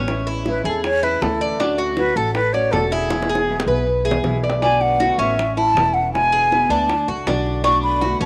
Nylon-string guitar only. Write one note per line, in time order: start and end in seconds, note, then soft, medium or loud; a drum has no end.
0.08 0.45 E3 medium
0.08 0.45 G#3 medium
0.08 0.46 C#4 medium
0.08 0.46 E4 medium
0.46 0.64 E3 medium
0.46 0.65 G#3 medium
0.46 0.65 C#4 medium
0.46 0.63 E4 medium
0.64 0.83 G#3 soft
0.64 0.83 C#4 soft
0.64 0.83 E4 medium
0.83 muted nylon-string guitar stroke medium
1.03 1.22 G#3 soft
1.03 1.22 C#4 soft
1.03 1.21 E4 medium
1.21 1.58 E3 medium
1.21 1.59 C#4 medium
1.21 1.60 E4 medium
1.59 1.96 D3 medium
1.59 1.96 A3 medium
1.59 1.97 C#4 medium
1.59 1.98 F#4 medium
1.97 2.15 D3 medium
1.97 2.16 A3 medium
1.97 2.16 C#4 medium
1.97 2.15 F#4 medium
2.16 2.34 A3 soft
2.16 2.35 C#4 medium
2.16 2.34 F#4 medium
2.35 muted nylon-string guitar stroke medium
2.54 2.72 A3 soft
2.54 2.73 C#4 medium
2.54 2.72 F#4 medium
2.73 3.10 D3 medium
2.73 3.10 A3 medium
2.73 3.11 C#4 medium
2.73 3.11 F#4 medium
3.11 3.47 B2 medium
3.11 3.48 E3 medium
3.11 3.48 G#3 medium
3.11 3.49 B3 medium
3.11 3.49 E4 medium
3.48 3.67 B2 medium
3.48 3.67 E3 medium
3.48 3.67 G#3 medium
3.48 3.67 B3 medium
3.48 3.66 E4 medium
3.67 3.85 G#3 soft
3.67 3.86 B3 medium
3.67 3.86 E4 medium
3.86 muted nylon-string guitar stroke medium
4.05 4.24 G#3 soft
4.05 4.24 B3 soft
4.05 4.23 E4 medium
4.24 4.61 B2 medium
4.24 4.62 E3 medium
4.24 4.62 G#3 medium
4.24 4.62 B3 medium
4.24 4.63 E4 medium
4.62 4.98 B2 medium
4.62 4.99 D3 medium
4.62 5.00 A3 medium
4.62 5.00 B3 medium
4.62 5.00 F#4 medium
5.00 5.18 B2 medium
5.00 5.18 D3 medium
5.00 5.18 A3 medium
5.00 5.19 B3 medium
5.00 5.18 F#4 medium
5.19 5.37 A3 soft
5.19 5.38 B3 soft
5.19 5.37 F#4 soft
5.38 muted nylon-string guitar stroke medium
5.57 5.75 A3 soft
5.57 5.75 C#4 soft
5.57 5.75 E4 medium
5.75 6.12 E3 medium
5.75 6.13 A3 medium
5.75 6.13 C#4 medium
5.75 6.13 E4 medium
6.13 6.50 B2 medium
6.13 6.50 D3 medium
6.13 6.51 G#3 medium
6.13 6.51 B3 medium
6.13 6.51 E4 medium
6.51 6.69 B2 medium
6.51 6.69 D3 medium
6.51 6.70 G#3 medium
6.51 6.70 B3 medium
6.51 6.70 E4 medium
6.71 6.89 G#3 soft
6.71 6.89 B3 medium
6.71 6.88 E4 soft
6.90 muted nylon-string guitar stroke medium
7.08 7.26 A3 soft
7.08 7.27 D4 soft
7.08 7.26 F#4 medium
7.26 7.63 D3 medium
7.26 7.64 A3 medium
7.26 7.64 D4 medium
7.26 7.64 F#4 medium
7.64 8.01 B2 medium
7.64 8.01 D3 medium
7.64 8.02 A3 medium
7.64 8.02 B3 medium
7.64 8.02 F#4 medium
8.02 8.20 B2 medium
8.02 8.20 D3 medium
8.02 8.20 A3 medium
8.02 8.21 B3 medium
8.02 8.20 F#4 medium
8.21 8.26 B3 soft
8.21 8.26 F#4 medium